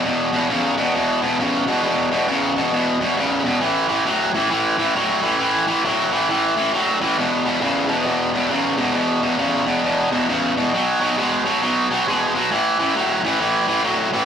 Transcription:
X:1
M:4/4
L:1/8
Q:"Swing" 1/4=135
K:A
V:1 name="Distorted electric guitar" clef=bass
[E,,B,,] [E,,B,,] [E,,C,] [E,,B,,] [E,,B,,] [E,,B,,] [E,,C,] [E,,B,,] | [E,,B,,] [E,,B,,] [E,,C,] [E,,B,,] [E,,B,,] [E,,B,,] [E,,C,] [E,,B,,] | [A,,E,] [A,,E,] [A,,F,] [A,,E,] [A,,E,] [A,,E,] [A,,F,] [A,,E,] | [A,,E,] [A,,E,] [A,,F,] [A,,E,] [A,,E,] [A,,E,] [A,,F,] [A,,E,] |
[E,,B,,] [E,,B,,] [E,,C,] [E,,B,,] [E,,B,,] [E,,B,,] [E,,C,] [E,,B,,] | [E,,B,,] [E,,B,,] [E,,C,] [E,,B,,] [E,,B,,] [E,,B,,] [E,,C,] [E,,B,,] | [B,,F,] [B,,F,] [B,,G,] [B,,F,] [B,,F,] [B,,F,] [B,,G,] [B,,F,] | [A,,E,] [A,,E,] [A,,F,] [A,,E,] [A,,E,] [A,,E,] [A,,F,] [A,,E,] |]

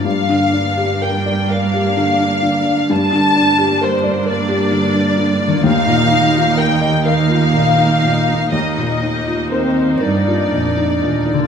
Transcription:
X:1
M:6/8
L:1/16
Q:3/8=42
K:Eblyd
V:1 name="Violin section"
f4 g2 f6 | a4 c2 d6 | f4 g2 f6 | e4 c2 d6 |]
V:2 name="Felt piano"
G,, D, D G B d B G D, D D, D | G,, D, D G B d B G D, D D, D | E,, B,, E F B e B F B,, E B,, E | E,, B,, E F B e B F B,, E B,, E |]
V:3 name="French horn section"
z12 | z12 | z12 | z4 C2 D6 |]
V:4 name="Harp"
[G,,B,Dd]12- | [G,,B,Dd]12 | [E,B,EF]12- | [E,B,EF]12 |]
V:5 name="Viola section"
[B,D]12 | [B,D]12 | [B,E]6 [B,E]6 | [B,E]12 |]
V:6 name="Cello section" clef=bass
G,,12 | G,,12 | E,,12 | E,,6 G,,2 F,,2 E,,2 |]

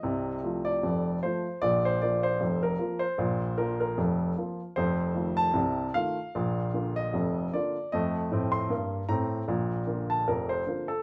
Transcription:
X:1
M:2/4
L:1/16
Q:"Swing 16ths" 1/4=76
K:Bb
V:1 name="Grand piano"
e3 d3 c2 | d c d c2 B2 c- | c2 B B z4 | c3 a3 f2- |
f3 e3 d2 | e3 c'3 b2- | b3 a B c2 A |]
V:2 name="Grand piano" clef=bass
[C,,C,]2 [F,A,F]2 [F,,,F,,]2 [F,A,F]2 | [B,,,B,,]2 [F,B,F]2 [F,,,F,,]2 [F,B,F]2 | [B,,,B,,]2 [F,B,F]2 [F,,,F,,]2 [F,B,F]2 | [F,,,F,,]2 [E,A,F]2 [C,,C,]2 [E,A,F]2 |
[B,,,B,,]2 [D,B,F]2 [F,,,F,,]2 [D,B,F]2 | [F,,A,]2 [A,,C]2 [G,,B,]2 [A,,C]2 | [B,,,B,,]2 [D,B,F]2 [F,,,F,,]2 [D,B,F]2 |]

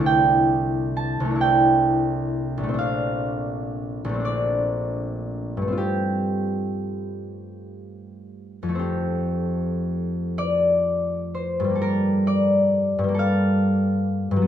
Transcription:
X:1
M:6/8
L:1/8
Q:3/8=41
K:F
V:1 name="Harp"
[dg]2 a g3 | f3 d3 | G6- | G3 d2 c |
B d2 f3 |]
V:2 name="Harp"
[C,,A,CDE]3 [C,,A,DE]3 | [B,,,A,CD]3 [B,,,A,CD]3 | [G,,A,CF]6 | [F,,A,CG]6 |
[G,,G,B,A]3 [G,,G,B,A]3 |]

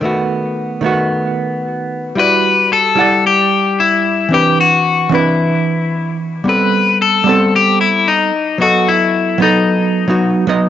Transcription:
X:1
M:4/4
L:1/16
Q:"Swing 16ths" 1/4=112
K:Em
V:1 name="Clean electric guitar"
z16 | B4 A4 G4 E4 | G2 F4 E8 z2 | B4 A4 G2 E2 ^D4 |
F2 E4 ^D8 z2 |]
V:2 name="Hollow-body jazz guitar"
[^D,A,B,F]6 [D,A,B,F]8- [D,A,B,F]2 | [G,EFd]6 [G,Edf]8- [G,Edf]2 | [E,CDB]6 [E,CDB]8- [E,CDB]2 | [G,B,CA]6 [G,B,CA]8 z2 |
[F,B,A^d]6 [F,B,^DA]4- [F,B,DA] [F,B,DF]3 [F,B,Dd]2 |]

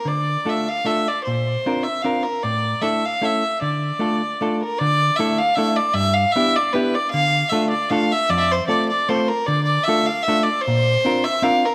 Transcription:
X:1
M:3/4
L:1/16
Q:"Swing" 1/4=153
K:Dm
V:1 name="Violin"
d4 e2 f2 e2 d2 | c6 e2 f2 B2 | d4 e2 f2 e4 | d8- d2 B2 |
d4 e2 f2 e2 d2 | e2 f2 e2 d2 =B2 d2 | f4 e2 d2 f2 e2 | d/2 e/2 d c2 d2 d2 c2 B2 |
d2 d2 e2 f2 e2 d2 | c6 e2 f2 B2 |]
V:2 name="Hollow-body jazz guitar"
D,4 [A,DFA]2 z2 [A,DFA]2 z2 | B,,4 [CDFB]2 z2 [CDFB]2 z2 | A,,4 [A,DEA]2 z2 [A,^CEA]2 z2 | D,4 [A,DFA]2 z2 [A,DFA]2 z2 |
D,4 [A,DEA]2 z2 [A,DEA]2 z2 | G,,4 [=B,DEG]2 z2 [B,DEG]2 z2 | D,4 [A,DFA]2 z2 [A,DFA]2 z2 | F,,4 [A,CFA]2 z2 [A,CFA]2 z2 |
D,4 [A,DFA]2 z2 [A,DFA]2 z2 | B,,4 [CDFB]2 z2 [CDFB]2 z2 |]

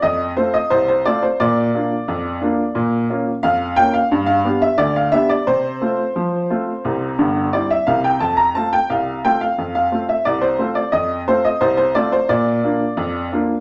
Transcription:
X:1
M:2/4
L:1/16
Q:1/4=88
K:F
V:1 name="Upright piano"
_e2 c e c c d c | d8 | z4 f2 g f- | f f2 e d f e d |
c8- | c4 d e f g | a b a g f2 g f- | f f2 e d c2 d |
_e2 c e c c d c | d8 |]
V:2 name="Upright piano"
F,,2 [A,CF]2 C,,2 [A,CF]2 | B,,2 [B,DF]2 F,,2 [B,DF]2 | B,,2 [B,_DF]2 F,,2 [B,DF]2 | G,,2 [=B,DG]2 D,,2 [B,DG]2 |
C,2 [A,CF]2 F,2 [A,CF]2 | [C,,C,]2 [G,,,G,,]2 [G,CE]2 [C,,C,]2 | F,,2 [A,CF]2 C,,2 [A,CF]2 | F,,2 [A,CF]2 C,,2 [A,CF]2 |
F,,2 [A,CF]2 C,,2 [A,CF]2 | B,,2 [B,DF]2 F,,2 [B,DF]2 |]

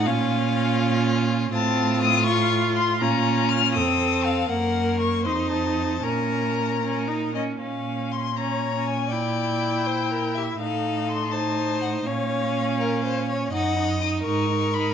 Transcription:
X:1
M:6/8
L:1/16
Q:3/8=81
K:Bbm
V:1 name="Violin"
f8- f2 z2 | =a4 e'2 d'4 c'2 | b4 f'2 e'4 f2 | g4 d'2 c'2 =a4 |
b8- b2 e2 | f4 c'2 b4 a2 | =g8- g2 =e2 | f4 c'2 =a4 g2 |
f8- f2 z2 | [K:Ebm] g4 e'2 d'4 c'2 |]
V:2 name="Violin"
F12 | F12 | F6 =A6 | B6 c6 |
B8- B2 z2 | z6 d6 | =d6 c2 B2 =G2 | =A6 c6 |
d6 B2 c2 d2 | [K:Ebm] e6 B6 |]
V:3 name="Viola"
D12 | C6 F6 | D6 C6 | B,6 E6 |
D6 D2 E2 D2 | D6 D3 D3 | =E12 | E6 E6 |
D12 | [K:Ebm] E2 E2 E2 E2 E2 E2 |]
V:4 name="Cello" clef=bass
B,,12 | =A,,12 | B,,6 F,,6 | G,,6 F,,6 |
B,,8- B,,2 z2 | B,,12- | B,,12 | =A,,12 |
B,,12 | [K:Ebm] G,,6 A,,6 |]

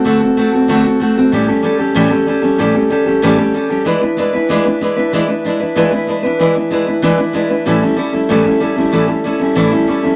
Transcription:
X:1
M:4/4
L:1/8
Q:1/4=189
K:Amix
V:1 name="Steel-string acoustic guitar"
[D,A,=CFA] [CFA] [A,CFA] [CFA] [D,A,CFA] [CFA] [A,CFA] [CFA] | [A,,E,G,CGA] [G,CGA] [G,CGA] [G,CGA] [A,,E,G,CGA] [G,CGA] [G,CGA] [G,CGA] | [A,,E,G,CGA] [G,CGA] [G,CGA] [G,CGA] [A,,E,G,CGA] [G,CGA] [G,CGA] [G,CGA] | [E,^G,DEB] [DEB] [G,DEB] [DEB] [E,G,DEB] [DEB] [G,DEB] [DEB] |
[E,^G,DEB] [DEB] [G,DEB] [DEB] [E,G,DEB] [DEB] [G,DEB] [DEB] | [E,^G,DEB] [DEB] [G,DEB] [DEB] [E,G,DEB] [DEB] [G,DEB] [DEB] | [A,,E,G,CEA] [G,CEA] [G,CEA] [G,CEA] [A,,E,G,CEA] [G,CEA] [G,CEA] [G,CEA] | [A,,E,G,CEA] [G,CEA] [G,CEA] [G,CEA] [A,,E,G,CEA] [G,CEA] [G,CEA] [G,CEA] |]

